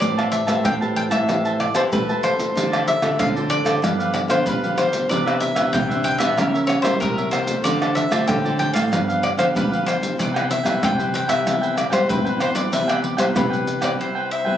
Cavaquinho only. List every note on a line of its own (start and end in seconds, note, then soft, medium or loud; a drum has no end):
0.01 0.16 G4 soft
0.01 0.16 C5 medium
0.01 0.16 E5 soft
0.01 0.17 A5 soft
0.18 0.31 C5 medium
0.18 0.31 E5 medium
0.18 0.31 A5 medium
0.32 muted cavaquinho stroke soft
0.47 0.63 C5 soft
0.47 0.63 E5 medium
0.47 0.62 A5 medium
0.64 0.79 G4 soft
0.64 0.79 C5 soft
0.64 0.80 E5 medium
0.64 0.80 A5 soft
0.81 1.11 C5 medium
0.81 1.10 E5 medium
0.81 1.09 A5 medium
1.10 1.27 C5 soft
1.10 1.27 E5 medium
1.10 1.26 A5 medium
1.28 1.43 G4 soft
1.28 1.43 C5 soft
1.28 1.44 E5 soft
1.28 1.44 A5 soft
1.45 1.60 C5 medium
1.45 1.60 E5 medium
1.45 1.59 A5 medium
1.60 muted cavaquinho stroke soft
1.75 1.91 C5 medium
1.75 1.91 E5 medium
1.75 1.90 A5 medium
1.92 2.07 G4 medium
1.92 2.07 C5 medium
1.92 2.07 E5 medium
1.92 2.08 A5 medium
2.09 2.23 C5 medium
2.09 2.23 E5 medium
2.09 2.23 A5 medium
2.23 2.54 G4 soft
2.23 2.54 C5 soft
2.23 2.55 E5 soft
2.23 2.55 A5 soft
2.56 2.70 F4 soft
2.56 2.71 A4 soft
2.56 2.71 C5 medium
2.56 2.71 D5 medium
2.72 2.86 A4 medium
2.72 2.86 C5 medium
2.72 2.86 D5 medium
2.86 muted cavaquinho stroke soft
3.02 3.18 A4 medium
3.02 3.18 C5 medium
3.02 3.17 D5 medium
3.18 3.34 F4 soft
3.18 3.34 A4 soft
3.18 3.34 C5 soft
3.18 3.35 D5 medium
3.36 3.65 A4 medium
3.36 3.65 C5 medium
3.36 3.64 D5 medium
3.65 3.81 A4 soft
3.65 3.81 C5 medium
3.65 3.81 D5 medium
3.82 3.97 D4 soft
3.82 3.98 G4 soft
3.82 3.98 B4 soft
3.82 3.98 F5 soft
3.99 4.13 G4 soft
3.99 4.13 B4 medium
3.99 4.13 F5 medium
4.29 4.45 G4 medium
4.29 4.45 B4 medium
4.29 4.45 F5 medium
4.47 4.61 D4 medium
4.47 4.62 G4 medium
4.47 4.62 B4 medium
4.47 4.62 F5 medium
4.63 4.76 G4 medium
4.63 4.78 B4 medium
4.63 4.77 F5 medium
4.77 5.08 D4 soft
4.77 5.09 G4 soft
4.77 5.09 F5 soft
5.10 5.25 G4 soft
5.10 5.25 B4 soft
5.10 5.25 C5 soft
5.10 5.25 E5 medium
5.26 5.39 B4 medium
5.26 5.39 C5 medium
5.26 5.39 E5 medium
5.40 muted cavaquinho stroke soft
5.55 5.72 B4 medium
5.55 5.72 C5 soft
5.55 5.71 E5 medium
5.73 5.88 G4 soft
5.73 5.89 B4 soft
5.73 5.89 C5 soft
5.73 5.88 E5 soft
5.89 6.19 B4 medium
5.89 6.20 C5 medium
5.89 6.18 E5 medium
6.19 6.35 B4 soft
6.19 6.36 C5 soft
6.19 6.35 E5 medium
6.37 6.52 G4 soft
6.37 6.52 A#4 soft
6.37 6.52 C#5 soft
6.37 6.53 E5 soft
6.54 6.67 A#4 medium
6.54 6.68 C#5 medium
6.54 6.68 E5 medium
6.68 muted cavaquinho stroke soft
6.83 7.00 A#4 soft
6.83 7.00 C#5 medium
6.83 6.99 E5 medium
7.01 7.16 G4 medium
7.01 7.16 A#4 medium
7.01 7.16 C#5 medium
7.01 7.17 E5 medium
7.18 7.32 A#4 medium
7.18 7.33 C#5 medium
7.18 7.32 E5 medium
7.32 7.63 G4 soft
7.32 7.64 A#4 soft
7.32 7.64 E5 soft
7.65 7.79 F4 soft
7.65 7.80 A4 medium
7.65 7.80 C5 soft
7.65 7.80 D5 medium
7.81 7.95 A4 medium
7.81 7.96 C5 medium
7.81 7.96 D5 medium
7.96 muted cavaquinho stroke soft
8.12 8.27 A4 soft
8.12 8.27 C5 medium
8.12 8.27 D5 medium
8.28 8.43 F4 soft
8.28 8.43 A4 soft
8.28 8.43 C5 soft
8.28 8.44 D5 soft
8.45 8.75 A4 soft
8.45 8.74 C5 medium
8.45 8.73 D5 medium
8.74 8.91 A4 soft
8.74 8.90 C5 medium
8.74 8.90 D5 medium
8.92 9.07 D4 soft
8.92 9.07 G4 soft
8.92 9.07 B4 medium
8.92 9.07 F5 soft
9.08 9.23 G4 medium
9.08 9.23 B4 medium
9.08 9.23 F5 medium
9.24 muted cavaquinho stroke soft
9.38 9.55 G4 medium
9.38 9.54 B4 medium
9.38 9.54 F5 medium
9.55 9.70 D4 medium
9.55 9.70 G4 medium
9.55 9.71 B4 medium
9.55 9.70 F5 medium
9.71 9.85 G4 medium
9.71 9.87 B4 medium
9.71 9.86 F5 medium
9.86 10.17 D4 soft
9.86 10.17 G4 soft
9.86 10.18 F5 soft
10.18 10.33 E4 soft
10.18 10.33 B4 soft
10.18 10.33 C5 soft
10.18 10.33 G5 soft
10.34 10.48 B4 medium
10.34 10.48 C5 medium
10.34 10.48 G5 medium
10.49 muted cavaquinho stroke soft
10.63 10.80 B4 medium
10.63 10.81 C5 medium
10.63 10.80 G5 medium
10.82 10.97 E4 soft
10.82 10.97 B4 soft
10.82 10.97 C5 soft
10.82 10.97 G5 medium
10.98 11.28 B4 medium
10.98 11.28 C5 medium
10.98 11.27 G5 medium
11.28 11.44 B4 medium
11.28 11.45 C5 soft
11.28 11.44 G5 medium
11.45 11.60 E4 soft
11.45 11.61 B4 medium
11.45 11.61 C5 soft
11.45 11.60 G5 soft
11.62 11.75 B4 medium
11.62 11.75 C5 soft
11.62 11.75 G5 medium
11.76 muted cavaquinho stroke soft
11.90 12.07 B4 medium
11.90 12.07 C5 medium
11.90 12.06 G5 medium
12.08 12.24 E4 medium
12.08 12.24 B4 medium
12.08 12.24 C5 medium
12.08 12.23 G5 medium
12.25 12.38 B4 medium
12.25 12.38 C5 medium
12.25 12.38 G5 medium
12.38 12.70 E4 soft
12.38 12.71 B4 soft
12.38 12.71 C5 soft
12.38 12.71 G5 medium
12.72 12.87 E4 soft
12.72 12.87 B4 soft
12.72 12.87 C5 soft
12.72 12.87 G5 soft
12.88 13.01 B4 medium
12.88 13.01 C5 medium
12.88 13.02 G5 medium
13.02 muted cavaquinho stroke soft
13.17 13.34 B4 medium
13.17 13.34 C5 soft
13.17 13.33 G5 medium
13.35 13.50 E4 soft
13.35 13.50 B4 medium
13.35 13.50 C5 soft
13.35 13.49 G5 soft
13.50 13.81 B4 medium
13.50 13.80 G5 medium
13.81 13.97 B4 medium
13.81 13.98 C5 medium
13.81 13.97 G5 medium
13.99 14.14 E4 soft
13.99 14.14 B4 soft
13.99 14.14 C5 soft
13.99 14.14 G5 soft
14.15 14.29 B4 medium
14.15 14.29 C5 medium
14.15 14.29 G5 medium
14.30 muted cavaquinho stroke soft
14.45 14.57 B4 medium
14.45 14.57 C5 soft
14.45 14.57 G5 medium